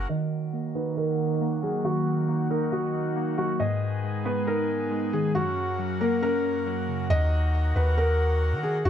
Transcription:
0.09 synth keys D#3, accordion D#3 F#3 A#3 F#4, felt piano D#5
0.53 synth keys A#3
0.75 synth keys D#4, felt piano B4
0.97 felt piano A#4, synth keys D#5
1.41 synth keys A#3
1.63 synth keys F#3, felt piano G#4
1.84 synth keys D#3, felt piano F#4
2.28 synth keys A#3
2.50 synth keys D#4, felt piano A#4
2.72 felt piano F#4, synth keys D#5
3.16 synth keys A#3
3.38 synth keys F#3, felt piano F#4
3.60 synth keys G#2, accordion G#3 B3 G#4, felt piano D#5
4.03 synth keys G#3
4.25 synth keys B3, felt piano B4
4.47 synth keys D#4, felt piano A#4
4.91 synth keys G#3
5.13 synth keys D#3, felt piano G#4
5.35 synth keys F#2, accordion C#3 F#3 A#3 F#4, felt piano F#4
5.79 synth keys F#3
6.01 synth keys A#3, felt piano A#4
6.22 synth keys C#4, felt piano A#4
6.66 synth keys F#3
6.88 synth keys C#3
7.10 808-style bass D#2, accordion D#3 F#3 A#3 F#4, felt piano D#5
7.76 808-style bass D#2, felt piano B4
7.98 felt piano A#4
8.52 808-style bass D#3
8.63 felt piano G#4
8.85 808-style bass D#2, accordion G#3, felt piano F#4

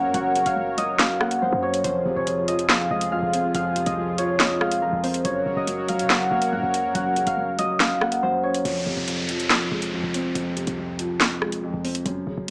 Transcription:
Already playing: grand piano F#2 C#3 F#3 A#3 C#4, analog synth pad F#3 F#4 A#4 C#5, harp A#4 C#5 D#5 F#5
0.04 808-style bass F#2
0.14 808-style bass F#1, grand piano F#2, harp F#5, closed hi-hat
0.35 808-style bass C#2, grand piano C#3, closed hi-hat
0.46 808-style bass F#1, harp F5, closed hi-hat
0.57 grand piano F#2
0.78 grand piano F#3, harp D#5, closed hi-hat
0.99 grand piano F#2, harp F5, snare, clap, closed hi-hat
1.20 grand piano A#3, harp F#5, cross-stick
1.31 closed hi-hat
1.42 grand piano F#2, harp C5
1.53 808-style bass F#2
1.63 grand piano C#4, harp C#5
1.74 closed hi-hat
1.84 808-style bass F1, grand piano F2, analog synth pad F3 F4 G#4, harp C5, closed hi-hat
2.06 808-style bass F1, grand piano C3
2.16 808-style bass D#1, harp C#5
2.27 grand piano F2, closed hi-hat
2.48 grand piano F3, harp D#5, closed hi-hat
2.59 closed hi-hat
2.69 grand piano F2, harp F5, snare, clap, closed hi-hat
2.91 808-style bass F1, grand piano G#3, harp D#5
3.01 closed hi-hat
3.12 808-style bass F2, grand piano F2, harp F5
3.23 808-style bass F1
3.33 grand piano C4, closed hi-hat
3.54 808-style bass F1, grand piano F2, harp F5, closed hi-hat
3.76 grand piano C3, closed hi-hat
3.86 808-style bass C2, harp D#5, closed hi-hat
3.97 grand piano F2
4.18 grand piano F3, harp C#5, closed hi-hat
4.40 grand piano F2, harp D#5, snare, clap, closed hi-hat
4.61 grand piano G#3, harp F5, cross-stick
4.71 closed hi-hat
4.82 grand piano F2, harp A#4
4.93 808-style bass F1
5.03 grand piano C4, harp C5, open hi-hat
5.14 closed hi-hat
5.25 808-style bass F#1, grand piano F#2, analog synth pad F#3 F#4 A#4 C#5, harp C#5, closed hi-hat
5.46 808-style bass F#1, grand piano C#3
5.57 808-style bass F#1, harp D#5
5.67 grand piano F#2, closed hi-hat
5.88 grand piano F#3, harp F5, closed hi-hat
5.99 808-style bass C#3, closed hi-hat
6.09 grand piano F#2, harp F#5, snare, clap, closed hi-hat
6.31 808-style bass F1, grand piano A#3, harp F5
6.42 closed hi-hat
6.52 grand piano F#2, 808-style bass A#2, harp F#5
6.63 808-style bass F#1
6.74 grand piano C#4, closed hi-hat
6.84 808-style bass F#2
6.95 808-style bass F#1, grand piano F#2, harp F#5, closed hi-hat
7.16 808-style bass C#2, grand piano C#3, closed hi-hat
7.27 808-style bass F#1, harp F5, closed hi-hat
7.37 grand piano F#2
7.58 grand piano F#3, harp D#5, closed hi-hat
7.80 grand piano F#2, harp F5, snare, clap, closed hi-hat
8.01 grand piano A#3, harp F#5, cross-stick
8.12 closed hi-hat
8.23 grand piano F#2, harp C5
8.43 grand piano C#4, harp C#5
8.54 closed hi-hat
8.65 808-style bass F1, grand piano F2, closed hi-hat, downlifter
8.87 808-style bass F1, grand piano C3
8.97 808-style bass D#1
9.07 grand piano F2, closed hi-hat
9.29 grand piano F3, closed hi-hat
9.40 closed hi-hat
9.50 grand piano F2, snare, clap, closed hi-hat
9.72 808-style bass F1, grand piano G#3
9.82 closed hi-hat
9.93 808-style bass F2, grand piano F2
10.04 808-style bass F1
10.14 grand piano C4, closed hi-hat
10.35 808-style bass F1, grand piano F2, closed hi-hat
10.56 grand piano C3, closed hi-hat
10.67 808-style bass C2, closed hi-hat
10.78 grand piano F2
10.99 grand piano F3, closed hi-hat
11.21 grand piano F2, snare, clap, closed hi-hat
11.42 grand piano G#3, cross-stick
11.52 closed hi-hat
11.63 grand piano F2
11.74 808-style bass F1
11.84 grand piano C4, open hi-hat
11.95 closed hi-hat
12.06 808-style bass F#1, grand piano F#2, closed hi-hat
12.27 808-style bass F#1, grand piano C#3
12.38 808-style bass F#1

